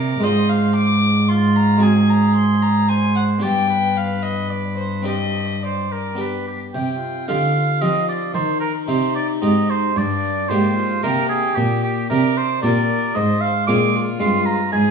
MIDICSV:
0, 0, Header, 1, 5, 480
1, 0, Start_track
1, 0, Key_signature, -3, "minor"
1, 0, Tempo, 532860
1, 210, Time_signature, 3, 2, 24, 8
1, 3573, Tempo, 554017
1, 6453, Tempo, 534283
1, 10773, Tempo, 524934
1, 13341, End_track
2, 0, Start_track
2, 0, Title_t, "Violin"
2, 0, Program_c, 0, 40
2, 0, Note_on_c, 0, 74, 68
2, 212, Note_on_c, 0, 75, 76
2, 226, Note_off_c, 0, 74, 0
2, 443, Note_on_c, 0, 77, 63
2, 457, Note_off_c, 0, 75, 0
2, 673, Note_off_c, 0, 77, 0
2, 678, Note_on_c, 0, 86, 78
2, 1159, Note_on_c, 0, 84, 64
2, 1173, Note_off_c, 0, 86, 0
2, 1402, Note_on_c, 0, 82, 62
2, 1415, Note_off_c, 0, 84, 0
2, 1642, Note_on_c, 0, 80, 66
2, 1655, Note_off_c, 0, 82, 0
2, 1887, Note_on_c, 0, 82, 66
2, 1901, Note_off_c, 0, 80, 0
2, 2115, Note_off_c, 0, 82, 0
2, 2121, Note_on_c, 0, 84, 65
2, 2358, Note_on_c, 0, 82, 62
2, 2371, Note_off_c, 0, 84, 0
2, 2602, Note_on_c, 0, 80, 66
2, 2615, Note_off_c, 0, 82, 0
2, 2841, Note_off_c, 0, 80, 0
2, 2846, Note_on_c, 0, 78, 55
2, 2918, Note_off_c, 0, 78, 0
2, 3094, Note_on_c, 0, 79, 69
2, 3577, Note_on_c, 0, 77, 59
2, 3590, Note_off_c, 0, 79, 0
2, 3801, Note_on_c, 0, 75, 55
2, 3814, Note_off_c, 0, 77, 0
2, 4042, Note_on_c, 0, 74, 52
2, 4055, Note_off_c, 0, 75, 0
2, 4264, Note_off_c, 0, 74, 0
2, 4269, Note_on_c, 0, 72, 52
2, 4517, Note_off_c, 0, 72, 0
2, 4523, Note_on_c, 0, 75, 66
2, 5009, Note_on_c, 0, 74, 48
2, 5022, Note_off_c, 0, 75, 0
2, 5740, Note_off_c, 0, 74, 0
2, 5979, Note_on_c, 0, 67, 50
2, 6200, Note_off_c, 0, 67, 0
2, 6211, Note_on_c, 0, 65, 51
2, 7405, Note_on_c, 0, 63, 54
2, 7419, Note_off_c, 0, 65, 0
2, 8848, Note_off_c, 0, 63, 0
2, 8853, Note_on_c, 0, 62, 53
2, 9331, Note_on_c, 0, 67, 53
2, 9345, Note_off_c, 0, 62, 0
2, 9565, Note_off_c, 0, 67, 0
2, 9570, Note_on_c, 0, 65, 52
2, 9812, Note_on_c, 0, 67, 60
2, 9825, Note_off_c, 0, 65, 0
2, 10771, Note_off_c, 0, 67, 0
2, 10790, Note_on_c, 0, 74, 59
2, 11251, Note_off_c, 0, 74, 0
2, 11258, Note_on_c, 0, 70, 63
2, 11741, Note_on_c, 0, 72, 66
2, 11755, Note_off_c, 0, 70, 0
2, 12230, Note_on_c, 0, 68, 57
2, 12243, Note_off_c, 0, 72, 0
2, 12469, Note_on_c, 0, 65, 60
2, 12483, Note_off_c, 0, 68, 0
2, 13181, Note_off_c, 0, 65, 0
2, 13189, Note_on_c, 0, 68, 71
2, 13341, Note_off_c, 0, 68, 0
2, 13341, End_track
3, 0, Start_track
3, 0, Title_t, "Oboe"
3, 0, Program_c, 1, 68
3, 0, Note_on_c, 1, 70, 62
3, 209, Note_on_c, 1, 72, 58
3, 222, Note_off_c, 1, 70, 0
3, 913, Note_off_c, 1, 72, 0
3, 1165, Note_on_c, 1, 65, 55
3, 1612, Note_off_c, 1, 65, 0
3, 1642, Note_on_c, 1, 68, 58
3, 2587, Note_off_c, 1, 68, 0
3, 2602, Note_on_c, 1, 72, 56
3, 3085, Note_on_c, 1, 74, 54
3, 3099, Note_off_c, 1, 72, 0
3, 3324, Note_off_c, 1, 74, 0
3, 3330, Note_on_c, 1, 71, 54
3, 4507, Note_off_c, 1, 71, 0
3, 4534, Note_on_c, 1, 67, 41
3, 4965, Note_off_c, 1, 67, 0
3, 5021, Note_on_c, 1, 72, 52
3, 5266, Note_on_c, 1, 70, 46
3, 5279, Note_off_c, 1, 72, 0
3, 5511, Note_on_c, 1, 71, 47
3, 5524, Note_off_c, 1, 70, 0
3, 5741, Note_off_c, 1, 71, 0
3, 5746, Note_on_c, 1, 67, 37
3, 5854, Note_off_c, 1, 67, 0
3, 5978, Note_on_c, 1, 79, 60
3, 6416, Note_off_c, 1, 79, 0
3, 6444, Note_on_c, 1, 77, 63
3, 6924, Note_on_c, 1, 75, 64
3, 6938, Note_off_c, 1, 77, 0
3, 7165, Note_off_c, 1, 75, 0
3, 7170, Note_on_c, 1, 74, 58
3, 7396, Note_off_c, 1, 74, 0
3, 7401, Note_on_c, 1, 72, 59
3, 7629, Note_off_c, 1, 72, 0
3, 7634, Note_on_c, 1, 70, 55
3, 7747, Note_off_c, 1, 70, 0
3, 7884, Note_on_c, 1, 72, 61
3, 8121, Note_off_c, 1, 72, 0
3, 8126, Note_on_c, 1, 74, 64
3, 8237, Note_off_c, 1, 74, 0
3, 8370, Note_on_c, 1, 75, 67
3, 8618, Note_on_c, 1, 72, 65
3, 8632, Note_off_c, 1, 75, 0
3, 8862, Note_on_c, 1, 74, 63
3, 8875, Note_off_c, 1, 72, 0
3, 9322, Note_on_c, 1, 72, 72
3, 9336, Note_off_c, 1, 74, 0
3, 9808, Note_off_c, 1, 72, 0
3, 9812, Note_on_c, 1, 70, 71
3, 10042, Note_off_c, 1, 70, 0
3, 10047, Note_on_c, 1, 68, 65
3, 10284, Note_on_c, 1, 67, 66
3, 10298, Note_off_c, 1, 68, 0
3, 10530, Note_off_c, 1, 67, 0
3, 10539, Note_on_c, 1, 67, 68
3, 10768, Note_off_c, 1, 67, 0
3, 10773, Note_on_c, 1, 70, 73
3, 11025, Note_on_c, 1, 72, 68
3, 11039, Note_off_c, 1, 70, 0
3, 11249, Note_off_c, 1, 72, 0
3, 11254, Note_on_c, 1, 74, 80
3, 11736, Note_on_c, 1, 75, 80
3, 11750, Note_off_c, 1, 74, 0
3, 11971, Note_on_c, 1, 77, 67
3, 11985, Note_off_c, 1, 75, 0
3, 12205, Note_off_c, 1, 77, 0
3, 12211, Note_on_c, 1, 86, 87
3, 12517, Note_off_c, 1, 86, 0
3, 12696, Note_on_c, 1, 84, 71
3, 12931, Note_on_c, 1, 82, 77
3, 12945, Note_off_c, 1, 84, 0
3, 13168, Note_off_c, 1, 82, 0
3, 13173, Note_on_c, 1, 80, 77
3, 13341, Note_off_c, 1, 80, 0
3, 13341, End_track
4, 0, Start_track
4, 0, Title_t, "Harpsichord"
4, 0, Program_c, 2, 6
4, 0, Note_on_c, 2, 48, 43
4, 0, Note_on_c, 2, 58, 34
4, 0, Note_on_c, 2, 67, 34
4, 164, Note_off_c, 2, 58, 0
4, 170, Note_off_c, 2, 67, 0
4, 178, Note_off_c, 2, 48, 0
4, 179, Note_on_c, 2, 56, 33
4, 193, Note_on_c, 2, 60, 36
4, 207, Note_on_c, 2, 65, 36
4, 221, Note_on_c, 2, 44, 41
4, 1589, Note_off_c, 2, 56, 0
4, 1600, Note_on_c, 2, 56, 33
4, 1601, Note_off_c, 2, 60, 0
4, 1608, Note_off_c, 2, 65, 0
4, 1613, Note_on_c, 2, 60, 38
4, 1624, Note_on_c, 2, 66, 35
4, 3029, Note_off_c, 2, 56, 0
4, 3036, Note_off_c, 2, 60, 0
4, 3041, Note_off_c, 2, 66, 0
4, 3048, Note_on_c, 2, 59, 31
4, 3057, Note_off_c, 2, 44, 0
4, 3060, Note_on_c, 2, 62, 32
4, 3074, Note_on_c, 2, 67, 36
4, 3089, Note_on_c, 2, 43, 35
4, 4477, Note_off_c, 2, 59, 0
4, 4483, Note_off_c, 2, 62, 0
4, 4489, Note_on_c, 2, 60, 29
4, 4490, Note_off_c, 2, 67, 0
4, 4503, Note_on_c, 2, 62, 28
4, 4515, Note_on_c, 2, 67, 30
4, 5454, Note_off_c, 2, 60, 0
4, 5461, Note_off_c, 2, 62, 0
4, 5464, Note_on_c, 2, 59, 31
4, 5468, Note_off_c, 2, 67, 0
4, 5477, Note_on_c, 2, 62, 30
4, 5489, Note_on_c, 2, 67, 31
4, 5774, Note_off_c, 2, 43, 0
4, 5950, Note_off_c, 2, 59, 0
4, 5957, Note_off_c, 2, 62, 0
4, 5963, Note_off_c, 2, 67, 0
4, 5980, Note_on_c, 2, 48, 37
4, 6415, Note_off_c, 2, 48, 0
4, 6445, Note_on_c, 2, 60, 30
4, 6446, Note_on_c, 2, 50, 42
4, 6449, Note_on_c, 2, 63, 32
4, 6454, Note_on_c, 2, 67, 34
4, 6793, Note_off_c, 2, 60, 0
4, 6796, Note_off_c, 2, 63, 0
4, 6799, Note_off_c, 2, 67, 0
4, 6893, Note_off_c, 2, 50, 0
4, 6922, Note_on_c, 2, 60, 34
4, 6923, Note_on_c, 2, 53, 40
4, 6924, Note_on_c, 2, 63, 32
4, 6927, Note_on_c, 2, 67, 36
4, 7270, Note_off_c, 2, 60, 0
4, 7271, Note_off_c, 2, 63, 0
4, 7274, Note_off_c, 2, 67, 0
4, 7370, Note_off_c, 2, 53, 0
4, 7400, Note_on_c, 2, 51, 38
4, 7852, Note_off_c, 2, 51, 0
4, 7878, Note_on_c, 2, 48, 38
4, 7881, Note_on_c, 2, 60, 33
4, 7884, Note_on_c, 2, 63, 32
4, 7889, Note_on_c, 2, 67, 37
4, 8234, Note_off_c, 2, 60, 0
4, 8236, Note_off_c, 2, 63, 0
4, 8239, Note_off_c, 2, 67, 0
4, 8334, Note_off_c, 2, 48, 0
4, 8365, Note_on_c, 2, 60, 33
4, 8367, Note_on_c, 2, 44, 41
4, 8369, Note_on_c, 2, 63, 32
4, 8376, Note_on_c, 2, 67, 37
4, 8717, Note_off_c, 2, 60, 0
4, 8720, Note_off_c, 2, 63, 0
4, 8724, Note_off_c, 2, 67, 0
4, 8819, Note_off_c, 2, 44, 0
4, 8855, Note_on_c, 2, 43, 42
4, 9302, Note_off_c, 2, 43, 0
4, 9339, Note_on_c, 2, 58, 35
4, 9342, Note_on_c, 2, 44, 43
4, 9342, Note_on_c, 2, 62, 35
4, 9346, Note_on_c, 2, 67, 40
4, 9682, Note_off_c, 2, 58, 0
4, 9684, Note_off_c, 2, 62, 0
4, 9687, Note_off_c, 2, 67, 0
4, 9781, Note_off_c, 2, 44, 0
4, 9814, Note_on_c, 2, 48, 45
4, 9815, Note_on_c, 2, 58, 39
4, 9823, Note_on_c, 2, 62, 38
4, 9824, Note_on_c, 2, 67, 43
4, 10161, Note_off_c, 2, 58, 0
4, 10165, Note_off_c, 2, 62, 0
4, 10167, Note_off_c, 2, 67, 0
4, 10259, Note_off_c, 2, 48, 0
4, 10302, Note_on_c, 2, 46, 43
4, 10741, Note_off_c, 2, 46, 0
4, 10777, Note_on_c, 2, 48, 50
4, 10787, Note_on_c, 2, 62, 39
4, 10789, Note_on_c, 2, 67, 44
4, 11126, Note_off_c, 2, 62, 0
4, 11128, Note_off_c, 2, 67, 0
4, 11217, Note_off_c, 2, 48, 0
4, 11260, Note_on_c, 2, 46, 46
4, 11261, Note_on_c, 2, 62, 38
4, 11265, Note_on_c, 2, 67, 45
4, 11606, Note_off_c, 2, 62, 0
4, 11609, Note_off_c, 2, 67, 0
4, 11704, Note_off_c, 2, 46, 0
4, 11737, Note_on_c, 2, 44, 48
4, 12179, Note_off_c, 2, 44, 0
4, 12218, Note_on_c, 2, 56, 41
4, 12219, Note_on_c, 2, 46, 50
4, 12221, Note_on_c, 2, 60, 37
4, 12228, Note_on_c, 2, 65, 43
4, 12561, Note_off_c, 2, 56, 0
4, 12563, Note_off_c, 2, 60, 0
4, 12567, Note_off_c, 2, 65, 0
4, 12658, Note_off_c, 2, 46, 0
4, 12689, Note_on_c, 2, 43, 50
4, 12693, Note_on_c, 2, 56, 39
4, 12695, Note_on_c, 2, 60, 37
4, 12699, Note_on_c, 2, 65, 39
4, 13039, Note_off_c, 2, 56, 0
4, 13040, Note_off_c, 2, 60, 0
4, 13042, Note_off_c, 2, 65, 0
4, 13135, Note_off_c, 2, 43, 0
4, 13174, Note_on_c, 2, 44, 40
4, 13341, Note_off_c, 2, 44, 0
4, 13341, End_track
5, 0, Start_track
5, 0, Title_t, "Cello"
5, 0, Program_c, 3, 42
5, 0, Note_on_c, 3, 48, 50
5, 207, Note_off_c, 3, 48, 0
5, 213, Note_on_c, 3, 44, 56
5, 3090, Note_on_c, 3, 43, 49
5, 3104, Note_off_c, 3, 44, 0
5, 5809, Note_off_c, 3, 43, 0
5, 5985, Note_on_c, 3, 48, 52
5, 6419, Note_off_c, 3, 48, 0
5, 6454, Note_on_c, 3, 50, 48
5, 6899, Note_off_c, 3, 50, 0
5, 6930, Note_on_c, 3, 53, 51
5, 7376, Note_off_c, 3, 53, 0
5, 7398, Note_on_c, 3, 51, 53
5, 7852, Note_off_c, 3, 51, 0
5, 7878, Note_on_c, 3, 48, 53
5, 8335, Note_off_c, 3, 48, 0
5, 8366, Note_on_c, 3, 44, 56
5, 8820, Note_off_c, 3, 44, 0
5, 8853, Note_on_c, 3, 43, 61
5, 9303, Note_off_c, 3, 43, 0
5, 9338, Note_on_c, 3, 44, 54
5, 9782, Note_off_c, 3, 44, 0
5, 9815, Note_on_c, 3, 48, 55
5, 10261, Note_off_c, 3, 48, 0
5, 10297, Note_on_c, 3, 46, 66
5, 10740, Note_off_c, 3, 46, 0
5, 10779, Note_on_c, 3, 48, 61
5, 11221, Note_off_c, 3, 48, 0
5, 11263, Note_on_c, 3, 46, 58
5, 11708, Note_off_c, 3, 46, 0
5, 11742, Note_on_c, 3, 44, 69
5, 12185, Note_off_c, 3, 44, 0
5, 12223, Note_on_c, 3, 46, 60
5, 12663, Note_off_c, 3, 46, 0
5, 12702, Note_on_c, 3, 43, 55
5, 13144, Note_off_c, 3, 43, 0
5, 13187, Note_on_c, 3, 44, 63
5, 13341, Note_off_c, 3, 44, 0
5, 13341, End_track
0, 0, End_of_file